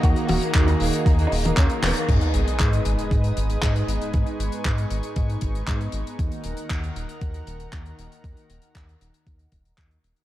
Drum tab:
CC |----------------|x---------------|----------------|----------------|
HH |xxoxxxoxxxoxxxox|xxxxxxxxxxxxxxxx|xxxxxxxxxxxxxxxx|xxxxxxxxxxxxxxxx|
CP |----x-------x-x-|----x-------x---|----x-------x---|----x-------x---|
T1 |--o--------o--o-|----------------|----------------|----------------|
BD |o---o---o---o---|o---o---o---o---|o---o---o-o-o---|o---o---o---o---|

CC |----------------|
HH |xxxxxxxxxxxxxxxx|
CP |----x-------x---|
T1 |----------------|
BD |o---o---o-o-o---|